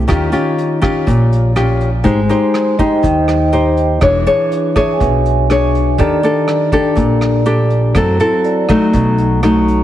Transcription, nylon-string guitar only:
0.08 1.04 D#3 medium
0.08 0.29 C#4 soft
0.08 0.29 F4 soft
0.08 0.29 G4 medium
0.32 0.78 C#4 soft
0.32 0.78 F4 medium
0.32 0.78 G4 medium
0.81 1.52 C#4 soft
0.81 1.52 F4 medium
0.81 1.52 G4 medium
1.07 2.03 A#2 soft
1.56 1.89 C#4 soft
1.56 1.89 F4 soft
1.56 1.89 G4 medium
2.04 3.00 G#3 medium
2.04 2.19 D#4 soft
2.04 2.19 G4 soft
2.04 2.19 C5 medium
2.29 2.75 D#4 soft
2.29 2.75 G4 soft
2.29 2.75 C5 soft
2.79 3.49 D#4 medium
2.79 3.49 G4 medium
2.79 3.49 C5 medium
3.03 3.99 D#3 soft
3.53 4.00 D#4 soft
3.53 4.00 G4 soft
3.53 4.00 C5 medium
4.01 4.97 E3 medium
4.01 4.22 D4 soft
4.01 4.23 G#4 soft
4.01 4.23 C#5 medium
4.27 4.72 D4 medium
4.27 4.72 G#4 soft
4.27 4.72 C#5 medium
4.76 5.46 D4 medium
4.76 5.46 G#4 medium
4.76 5.46 C#5 medium
5.01 5.97 B2 soft
5.50 5.97 D4 soft
5.50 5.97 G#4 medium
5.50 5.97 C#5 soft
5.99 6.95 D#3 soft
5.99 6.19 D4 soft
5.99 6.20 G4 soft
5.99 6.20 A4 medium
6.23 6.69 D4 medium
6.23 6.69 G4 soft
6.23 6.69 A4 soft
6.72 7.42 D4 medium
6.72 7.43 G4 medium
6.72 7.43 A4 medium
6.96 7.92 A#2 soft
7.46 7.93 D4 soft
7.46 7.93 G4 medium
7.46 7.94 A4 soft
7.95 8.68 F#3 soft
7.95 8.16 C4 medium
7.95 8.16 E4 soft
7.95 8.17 A4 medium
8.20 8.65 C4 soft
8.20 8.66 E4 medium
8.20 8.66 A4 medium
8.69 9.39 F#3 medium
8.69 9.39 A3 medium
8.69 9.40 D#4 medium
8.93 9.84 B2 soft
9.43 9.84 F#3 soft
9.43 9.84 A3 soft
9.43 9.84 D#4 soft

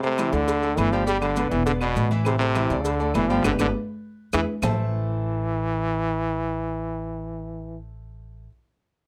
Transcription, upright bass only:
0.32 0.74 D2 loud
0.77 1.46 G1 loud
1.51 1.93 E1 loud
1.95 2.64 A1 loud
2.70 3.11 D2 loud
3.15 3.42 G1 medium
3.45 3.55 G1 loud
3.59 3.70 G1 loud
4.33 4.44 E2 loud
4.62 8.46 A1 loud

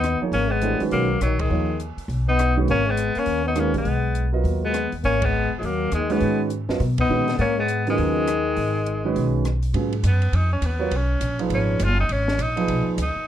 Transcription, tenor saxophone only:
0.00 0.20 D#4 medium
0.33 0.52 C#4 medium
0.51 0.80 B3 medium
0.92 1.19 A#3 medium
1.22 1.42 F#3 medium
1.40 1.80 G#3 medium
2.29 2.56 D#4 medium
2.71 2.92 C#4 loud
2.90 3.20 B3 medium
3.19 3.47 C#4 medium
3.48 3.61 D#4 medium
3.60 3.76 C#4 medium
3.78 4.31 B3 medium
4.65 4.91 B3 medium
5.05 5.26 C#4 loud
5.25 5.53 B3 medium
5.58 5.67 G#3 medium
5.65 5.93 A#3 medium
5.94 6.14 G#3 medium
6.12 6.41 B3 medium
7.00 7.35 D#4 medium
7.38 7.43 B3 medium
7.38 7.58 C#4 loud
7.60 7.86 B3 medium
7.90 9.43 G#3 medium
10.07 10.37 B3 medium
10.35 10.52 D#4 medium
10.53 10.67 C#4 medium
10.65 10.97 B3 medium
10.96 11.42 C#4 medium
11.54 11.86 C#4 medium
11.84 11.99 F4 loud
12.00 12.14 D#4 medium
12.13 12.44 C#4 medium
12.42 12.88 D#4 medium
13.02 13.27 D#4 medium

